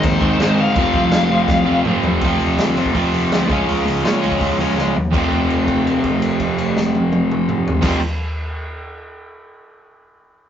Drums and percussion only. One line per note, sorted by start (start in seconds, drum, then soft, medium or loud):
0.03 kick loud
0.03 crash medium
0.22 kick medium
0.40 snare loud
0.40 crash medium
0.76 kick loud
0.76 crash medium
0.94 kick medium
1.11 snare loud
1.11 crash medium
1.48 kick loud
1.48 snare medium
1.85 mid tom loud
2.03 floor tom loud
2.21 kick loud
2.21 open hi-hat medium
2.40 open hi-hat medium
2.59 snare loud
2.59 open hi-hat medium
2.77 open hi-hat medium
2.86 kick medium
2.95 kick medium
2.95 open hi-hat medium
3.14 open hi-hat medium
3.32 snare loud
3.32 open hi-hat medium
3.50 kick loud
3.50 open hi-hat medium
3.69 open hi-hat medium
3.87 open hi-hat medium
4.05 snare loud
4.05 open hi-hat medium
4.23 open hi-hat medium
4.32 kick medium
4.41 kick medium
4.41 open hi-hat medium
4.60 open hi-hat medium
4.78 snare medium
4.96 floor tom medium
5.13 kick loud
5.13 crash medium
5.32 kick medium
5.32 crash soft
5.50 crash soft
5.68 kick medium
5.68 crash soft
5.87 crash soft
6.04 kick medium
6.04 crash soft
6.22 crash soft
6.40 kick medium
6.40 crash soft
6.58 crash medium
6.77 snare medium
6.95 high tom medium
7.12 high tom loud
7.31 mid tom loud
7.49 mid tom loud
7.68 floor tom loud
7.82 kick loud
7.82 snare medium
7.82 crash loud